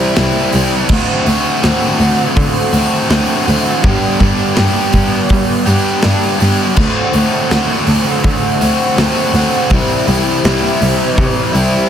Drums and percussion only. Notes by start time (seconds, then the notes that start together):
0.16 snare, open hi-hat
0.52 open hi-hat
0.89 kick, crash
1.26 open hi-hat
1.63 snare, open hi-hat
2.00 open hi-hat
2.37 kick, open hi-hat
2.73 open hi-hat
3.10 snare, open hi-hat
3.48 open hi-hat
3.84 kick, open hi-hat
4.20 kick, open hi-hat
4.56 snare, open hi-hat
4.93 kick, open hi-hat
5.29 kick, open hi-hat
5.66 open hi-hat
6.02 snare, open hi-hat
6.40 open hi-hat
6.76 kick, crash
7.13 open hi-hat
7.51 snare, open hi-hat
7.87 open hi-hat
8.24 kick, open hi-hat
8.61 open hi-hat
8.98 snare, open hi-hat
9.34 open hi-hat
9.70 kick, open hi-hat
10.08 open hi-hat
10.45 snare, open hi-hat
10.82 open hi-hat
11.18 kick, open hi-hat
11.55 open hi-hat